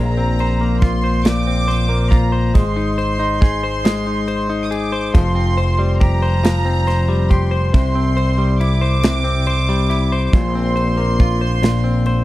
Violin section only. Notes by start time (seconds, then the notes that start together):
Already playing: A#5
0.82 C6
1.25 D6
2.12 A#5
2.54 C6
4.65 D#6
4.71 D6
5.14 C6
6.01 A#5
7.31 C6
7.74 C6
8.61 D6
10.27 D6
10.34 C6